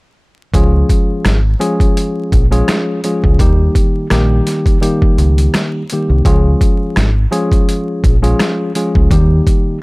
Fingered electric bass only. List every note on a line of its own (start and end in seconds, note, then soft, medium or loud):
0.54 0.82 C#2 loud
1.25 1.54 G#1 medium
2.32 2.61 A#1 medium
3.24 3.36 C#2 medium
3.39 3.68 D#2 loud
4.11 4.39 A#1 medium
5.18 5.46 C#2 loud
6.10 6.22 C2 medium
6.25 6.54 C#2 loud
6.97 7.25 G#1 medium
8.04 8.32 A#1 medium
8.95 9.08 C#2 medium
9.11 9.39 D#2 loud